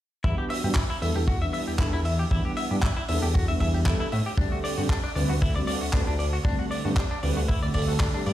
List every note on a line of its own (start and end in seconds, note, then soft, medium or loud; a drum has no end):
0.24 0.34 E2 medium
0.24 0.61 E3 medium
0.24 0.61 G3 medium
0.24 0.61 B3 medium
0.24 0.61 D4 medium
0.24 0.35 E4 medium
0.24 0.61 F#4 medium
0.24 kick loud
0.38 0.44 G4 medium
0.50 0.57 E5 medium
0.50 open hi-hat loud
0.64 0.72 G2 medium
0.64 0.73 E3 medium
0.64 0.73 G3 medium
0.64 0.73 B3 medium
0.64 0.73 D4 medium
0.64 0.73 F#4 loud
0.64 0.68 G4 medium
0.75 0.83 E4 medium
0.75 kick loud
0.75 clap loud
0.90 0.96 E4 medium
1.01 1.11 E2 medium
1.01 1.18 E3 medium
1.01 1.18 G3 medium
1.01 1.18 B3 medium
1.01 1.18 D4 medium
1.01 1.18 A4 loud
1.01 1.09 E5 medium
1.01 open hi-hat medium
1.16 1.47 E2 medium
1.16 1.19 G4 medium
1.28 1.38 F#4 medium
1.28 kick loud
1.41 1.76 E3 medium
1.41 1.76 G3 medium
1.41 1.76 B3 medium
1.41 1.77 D4 medium
1.41 1.77 E4 medium
1.41 1.45 E5 medium
1.53 1.61 E5 medium
1.53 open hi-hat loud
1.68 1.77 E2 soft
1.68 1.71 G4 medium
1.79 1.89 E2 medium
1.79 1.96 E3 medium
1.79 1.96 G3 medium
1.79 1.96 B3 medium
1.79 1.96 D4 medium
1.79 1.86 E4 medium
1.79 1.96 A4 loud
1.79 kick loud
1.79 clap loud
1.93 2.25 E2 medium
1.93 1.99 E4 medium
2.05 2.12 E5 medium
2.05 open hi-hat loud
2.19 2.23 G4 medium
2.31 2.41 E2 medium
2.31 2.67 E3 medium
2.31 2.67 G3 medium
2.31 2.68 B3 medium
2.31 2.68 D4 medium
2.31 2.42 E4 medium
2.31 2.68 F#5 medium
2.31 kick loud
2.45 2.51 G4 medium
2.57 2.64 E5 medium
2.57 open hi-hat loud
2.70 2.79 G2 medium
2.70 2.80 E3 medium
2.70 2.80 G3 medium
2.70 2.80 B3 medium
2.70 2.80 D4 medium
2.70 2.80 F#4 loud
2.70 2.75 G4 medium
2.83 2.90 E4 medium
2.83 kick loud
2.83 clap loud
2.97 3.03 E4 medium
3.08 3.18 E2 medium
3.08 3.25 E3 medium
3.08 3.25 G3 medium
3.08 3.25 B3 medium
3.08 3.25 D4 medium
3.08 3.26 A4 loud
3.08 3.16 E5 medium
3.08 open hi-hat loud
3.22 3.54 E2 medium
3.22 3.26 G4 medium
3.34 3.45 F#4 medium
3.34 kick loud
3.48 3.83 E3 medium
3.48 3.83 G3 medium
3.48 3.83 B3 medium
3.48 3.83 D4 medium
3.48 3.84 E4 medium
3.48 3.52 E5 medium
3.60 3.93 E2 medium
3.60 3.67 E5 medium
3.60 kick medium
3.60 open hi-hat loud
3.74 3.78 G4 medium
3.85 4.02 E3 loud
3.85 4.03 G3 medium
3.85 4.03 B3 medium
3.85 4.03 D4 medium
3.85 3.93 E4 medium
3.85 4.03 A4 loud
3.85 kick loud
3.85 clap loud
4.00 4.06 E4 medium
4.12 4.22 A2 loud
4.12 4.19 E5 medium
4.12 open hi-hat loud
4.26 4.30 G4 medium
4.37 4.47 D2 medium
4.37 4.74 D3 medium
4.37 4.74 G3 medium
4.37 4.75 A3 medium
4.37 4.75 C4 medium
4.37 4.49 D4 medium
4.37 4.75 G4 medium
4.37 kick loud
4.52 4.58 F#4 medium
4.64 4.71 D5 medium
4.64 open hi-hat loud
4.77 4.86 G2 medium
4.77 4.87 D3 medium
4.77 4.87 G3 medium
4.77 4.87 A3 medium
4.77 4.87 C4 medium
4.77 4.81 F#4 medium
4.77 4.87 G4 loud
4.89 4.97 D4 medium
4.89 kick loud
4.89 clap loud
5.04 5.10 D4 medium
5.15 5.25 D2 medium
5.15 5.32 D3 medium
5.15 5.32 G3 medium
5.15 5.32 A3 medium
5.15 5.32 C4 medium
5.15 5.32 B4 loud
5.15 5.23 D5 medium
5.15 open hi-hat loud
5.30 5.61 D2 medium
5.30 5.33 F#4 medium
5.42 5.52 E4 loud
5.42 kick loud
5.55 5.90 D3 medium
5.55 5.90 G3 medium
5.55 5.91 A3 medium
5.55 5.91 C4 medium
5.55 5.91 F#4 medium
5.55 5.59 D5 medium
5.67 5.74 D5 medium
5.67 open hi-hat loud
5.81 5.91 D2 soft
5.81 5.85 F#4 medium
5.93 6.03 D2 medium
5.93 6.10 D3 medium
5.93 6.10 G3 medium
5.93 6.10 A3 medium
5.93 6.10 C4 medium
5.93 6.00 D4 medium
5.93 6.10 B4 loud
5.93 kick loud
5.93 clap loud
6.07 6.39 D2 medium
6.07 6.13 D4 medium
6.19 6.26 D5 medium
6.19 open hi-hat loud
6.33 6.37 F#4 medium
6.45 6.54 D2 medium
6.45 6.81 D3 medium
6.45 6.81 G3 medium
6.45 6.82 A3 medium
6.45 6.82 C4 medium
6.45 6.55 D4 medium
6.45 kick loud
6.59 6.65 F#4 medium
6.71 6.78 D5 medium
6.71 open hi-hat medium
6.84 6.93 G2 medium
6.84 6.94 D3 medium
6.84 6.94 G3 medium
6.84 6.94 A3 medium
6.84 6.94 C4 medium
6.84 6.88 F#4 medium
6.84 6.94 G4 loud
6.96 7.04 D4 medium
6.96 kick loud
6.96 clap loud
7.11 7.17 D4 medium
7.22 7.32 D2 medium
7.22 7.39 D3 medium
7.22 7.39 G3 medium
7.22 7.39 A3 medium
7.22 7.39 C4 medium
7.22 7.39 B4 loud
7.22 7.30 D5 medium
7.22 open hi-hat loud
7.37 7.69 D2 medium
7.37 7.40 F#4 medium
7.48 7.59 E4 medium
7.48 kick loud
7.62 7.72 D3 medium
7.62 7.72 G3 medium
7.62 7.72 A3 medium
7.62 7.72 C4 medium
7.62 7.72 F#4 medium
7.62 7.66 D5 medium
7.74 8.07 D2 medium
7.74 8.11 D3 medium
7.74 8.11 G3 medium
7.74 8.11 A3 medium
7.74 8.11 C4 medium
7.74 8.11 A4 medium
7.74 7.81 D5 medium
7.74 kick medium
7.74 open hi-hat loud
7.88 7.92 F#4 medium
8.00 8.07 D4 medium
8.00 kick loud
8.00 clap loud
8.14 8.23 D3 medium
8.14 8.23 G3 medium
8.14 8.23 A3 medium
8.14 8.24 C4 medium
8.14 8.20 D4 medium
8.14 8.24 G4 medium
8.26 8.33 G2 loud
8.26 8.33 D3 medium
8.26 8.33 G3 medium
8.26 8.33 A3 medium
8.26 8.33 C4 medium
8.26 8.33 G4 medium
8.26 8.33 D5 medium
8.26 open hi-hat loud